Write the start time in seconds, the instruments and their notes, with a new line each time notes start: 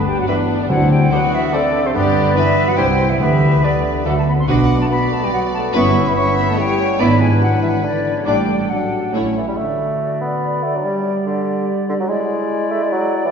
Already playing: bassoon B3, clarinet D4, violin section D4
0.07 french horn section G3, flute G5
0.19 french horn section F#3, flute F#5
0.27 french horn section E3, clarinet B3, viola section D4 B4, bassoon D4, violin section B4, flute E5
0.60 french horn section D3, flute D5
0.69 double bass section D2, cello section D2, timpani D3, french horn section F#3, bassoon C4, clarinet E4, flute F#5
0.91 french horn section G3, flute G5
1.11 french horn section F#3, bassoon B3, viola section D4 A4, clarinet D4, violin section F#4 C5, flute F#5
1.34 french horn section E3, flute E5
1.52 french horn section D3, bassoon A3, clarinet C4, viola section D4 A4, violin section A4 C5, flute D5
1.85 french horn section C3, flute C5
1.93 double bass section G1, cello section G2, french horn section D3, bassoon B3, clarinet D4, violin section G4, flute D5
2.34 french horn section E3, viola section D4 G4, violin section B4, flute E5
2.67 french horn section F#3, flute F#5
2.76 double bass section C2, cello section C3, french horn section G3, bassoon C4, clarinet E4, viola section E4 G4, violin section C5, flute G5
3.09 french horn section E3, flute E5
3.18 double bass section D2, cello section D3, timpani D3, french horn section E3, bassoon B3, clarinet G4, violin section B4, flute E5
3.63 french horn section D3, bassoon B3, viola section D4 G4, clarinet G4, violin section B4, flute D5
4.05 double bass section D2, cello section D3, french horn section F#3, bassoon A3, viola section D4 F#4, clarinet A4, violin section A4, flute F#5
4.18 french horn section A3, flute A5
4.26 french horn section B3, flute B5
4.37 french horn section C4, flute C6
4.47 double bass section B1, cello section B2, bassoon B3, french horn section D4, viola section D4 F#4, clarinet F#4, violin section B4 F#5, flute D6
4.80 french horn section A3, flute A5
4.90 french horn section B3, bassoon B3, clarinet F#4, violin section D5, flute B5
5.10 french horn section A3, flute A5
5.22 french horn section G3, flute G5
5.31 french horn section F#3, bassoon B3, clarinet F#4, flute F#5
5.53 french horn section A3, flute A5
5.73 double bass section G1, cello section G2, viola section B3 E4, bassoon B3, french horn section C#4, clarinet E4, violin section B4 E5, flute C#6
6.05 french horn section B3, flute B5
6.15 french horn section C#4, violin section E5, flute C#6
6.36 french horn section B3, flute B5
6.48 french horn section A3, flute A5
6.58 french horn section G3, bassoon B3, clarinet E4, violin section C#5, flute G5
6.80 bassoon C#4
6.98 double bass section G#1, cello section G#2, french horn section B3, viola section B3 E4, bassoon D4, clarinet E4, violin section B4 D5, flute B5
7.20 french horn section G#3, flute G#5
7.41 french horn section F#3, flute F#5
7.61 french horn section E3, flute E5
7.82 french horn section D3, bassoon D4, clarinet E4, flute D5
8.14 french horn section C#3, flute C#5
8.25 double bass section A1, cello section A2, french horn section G3, viola section A3 D4, clarinet D4, bassoon D4, violin section A4 D5, flute G5
8.69 french horn section F#3, bassoon D4, clarinet D4, flute F#5
9.13 double bass section A1, cello section A2, viola section A3 E4, bassoon C#4, clarinet E4, violin section C#5
9.37 bassoon E3
9.48 bassoon G3
9.57 french horn section D3, bassoon A3, clarinet F#4, flute D5
10.21 bassoon B3
10.63 bassoon A3
10.75 bassoon F#3
10.84 french horn section G3, bassoon G3, clarinet G4
11.26 bassoon D3
11.89 bassoon D3
12.00 bassoon F#3
12.08 french horn section G#3, bassoon G#3, clarinet E4, flute D5
12.72 bassoon A3
12.83 bassoon G#3
12.92 bassoon F#3
13.26 bassoon E3